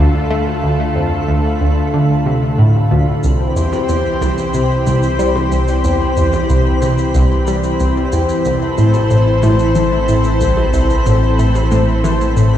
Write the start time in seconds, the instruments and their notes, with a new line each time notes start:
Already playing: sub bass D2, analog synth pad D3 A3 F4 A4, synth texture B5
0.30 synth arpeggio sound A3
0.63 synth arpeggio sound D2
0.96 synth arpeggio sound F2
1.28 synth arpeggio sound D2
1.61 synth arpeggio sound D2
1.94 synth arpeggio sound D3
2.26 synth arpeggio sound C3
2.59 synth arpeggio sound A2
2.91 synth arpeggio sound D2
3.23 synth arpeggio sound C2, sub bass C2, analog synth pad E3 C4 G4 C5, synth texture B5, shaker
3.56 synth arpeggio sound E2, shaker
3.73 percussion blips, shaker
3.89 synth arpeggio sound E2, shaker
4.21 synth arpeggio sound C2, percussion blips, shaker
4.38 shaker
4.54 synth arpeggio sound C3, shaker
4.87 synth arpeggio sound C2, shaker
5.03 shaker
5.19 synth arpeggio sound G3, shaker
5.36 percussion blips
5.52 synth arpeggio sound C2, shaker
5.68 shaker
5.84 synth arpeggio sound E2, shaker
6.17 synth arpeggio sound E2, shaker
6.33 percussion blips, shaker
6.49 synth arpeggio sound C2, shaker
6.82 synth arpeggio sound C3, percussion blips, shaker
6.98 shaker
7.15 synth arpeggio sound C2, shaker
7.47 synth arpeggio sound G3, shaker
7.64 shaker
7.80 synth arpeggio sound C2, shaker
8.12 synth arpeggio sound E2, shaker
8.29 shaker
8.45 sub bass A1, synth arpeggio sound C2, analog synth pad A4 C5, shaker
8.78 synth arpeggio sound A2, shaker
8.94 percussion blips, shaker
9.10 synth arpeggio sound A2, shaker
9.43 synth arpeggio sound A2, percussion blips, shaker
9.59 shaker
9.75 synth arpeggio sound E3, shaker
10.08 synth arpeggio sound A2, shaker
10.24 shaker
10.41 synth arpeggio sound C2, shaker
10.57 percussion blips
10.74 synth arpeggio sound C2, shaker
10.90 shaker
11.06 synth arpeggio sound A2, percussion blips, shaker
11.39 synth arpeggio sound A2, shaker
11.55 percussion blips, shaker
11.71 synth arpeggio sound A2, shaker
12.04 synth arpeggio sound E3, percussion blips, shaker
12.21 shaker
12.36 synth arpeggio sound A2, shaker